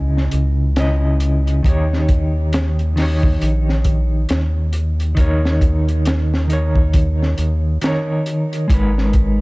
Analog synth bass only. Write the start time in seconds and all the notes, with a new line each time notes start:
Already playing: C#2
0.33 C#2
1.65 D#2
3.42 A#1
4.30 D#2
5.18 D#2
7.39 D#2
8.70 G#1